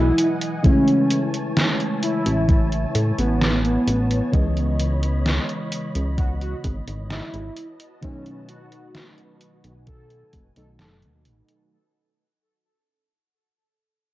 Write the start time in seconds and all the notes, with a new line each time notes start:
Already playing: B1 B2 E3 F#3 G#3 E4 D#5 F#5 G#5
0.18 closed hi-hat
0.41 closed hi-hat
0.63 C#3 E3 G#3 A3 C#4 E4 C#5 A5, kick, closed hi-hat
0.88 closed hi-hat
1.10 closed hi-hat
1.34 closed hi-hat
1.57 snare, closed hi-hat
1.80 closed hi-hat
2.02 E4, closed hi-hat
2.26 A1, closed hi-hat
2.49 kick, closed hi-hat
2.72 closed hi-hat
2.95 A2, closed hi-hat
3.18 A1 B3, closed hi-hat
3.41 snare, closed hi-hat
3.64 B3, closed hi-hat
3.87 A1, closed hi-hat
4.11 closed hi-hat
4.32 C#2 C#3 E3 G#3 B3 D#5 B5, kick, closed hi-hat
4.57 closed hi-hat
4.80 closed hi-hat
5.03 closed hi-hat
5.26 snare, closed hi-hat
5.49 closed hi-hat
5.72 closed hi-hat
5.95 C#2, closed hi-hat
6.18 F#4, kick, closed hi-hat
6.41 F#4, closed hi-hat
6.64 G#1, kick, closed hi-hat
6.88 G#1, closed hi-hat
7.10 E4, snare, closed hi-hat
7.34 G#1, closed hi-hat
7.56 F#4 B4 A5, closed hi-hat
7.80 closed hi-hat
8.01 B2 D#3 F#3 A3 C#4 D#4, kick, closed hi-hat
8.26 closed hi-hat
8.49 F#4, closed hi-hat
8.72 closed hi-hat
8.95 snare, closed hi-hat
9.18 closed hi-hat
9.41 G#5, closed hi-hat
9.64 B1, closed hi-hat
9.87 A4, kick, closed hi-hat
10.10 closed hi-hat
10.33 F#1, kick, closed hi-hat
10.56 B1 B2 D#3 F#3 A3 D#4 A4, closed hi-hat
10.79 F#1 A4, snare, closed hi-hat
11.02 D#2, closed hi-hat
11.25 A1, closed hi-hat
11.49 closed hi-hat